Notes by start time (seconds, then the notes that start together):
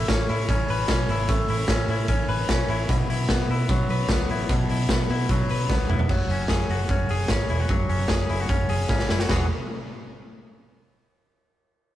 Already playing: A3 E4 C#5
0.08 A1 C#4, kick, snare, hi-hat pedal, ride
0.29 A2 E4, open hi-hat
0.49 A1 C#4, kick, hi-hat pedal, ride
0.68 A1 B4, open hi-hat
0.88 B1 C#4, kick, snare, hi-hat pedal, ride
1.09 G#1 E4, open hi-hat
1.29 A1 A3, kick, hi-hat pedal, ride
1.48 A1 E4, open hi-hat
1.68 A1 C#4, kick, snare, hi-hat pedal, ride
1.87 A2 E4, open hi-hat
2.08 A1 C#4, kick, hi-hat pedal, ride
2.28 A1 B4, open hi-hat
2.49 B1 C#4, kick, snare, hi-hat pedal, ride
2.68 A1 E4, open hi-hat
2.89 B1 B2, kick, hi-hat pedal, ride
3.08 B1 E4, open hi-hat
3.29 B1 B3, kick, snare, hi-hat pedal, ride
3.49 B2 E4, open hi-hat
3.69 B1 F#3, kick, hi-hat pedal, ride
3.89 B1 B4, open hi-hat
4.09 C#2 B3, kick, snare, hi-hat pedal, ride
4.29 A1 E4, open hi-hat
4.49 B1 B2, kick, hi-hat pedal, ride
4.69 B1 E4, open hi-hat
4.89 B1 B3, kick, snare, hi-hat pedal, ride
5.10 B2 E4, open hi-hat
5.29 B1 F#3, kick, hi-hat pedal, ride
5.49 B1 B4, open hi-hat
5.69 C#2 B3, kick, snare
5.89 E1 E4, mid tom
5.99 floor tom
6.09 F#1 F#3, kick, crash
6.29 F#1 C#4, open hi-hat
6.48 F#1 G#4, kick, snare, closed hi-hat
6.69 F#1 F#4, open hi-hat
6.89 F#1 C#4, kick, closed hi-hat
7.09 F#1 G#4, open hi-hat
7.28 G#1 C#4, kick, snare, closed hi-hat
7.49 E1 E4, open hi-hat
7.60 F#4
7.69 F#1 F#3, kick, closed hi-hat
7.89 F#1 C#4, open hi-hat
8.08 F#1 G#4, kick, snare, closed hi-hat
8.29 F#1 E4, open hi-hat
8.40 F#4
8.49 F#1 C#4, kick, closed hi-hat
8.69 F#1 G#4, open hi-hat
8.89 G#1 C#4, kick, snare
8.99 snare
9.09 F#1 E4, snare
9.19 F#4, snare
9.29 E1 E3 F#3 B3 F#4 G#4, kick, snare, crash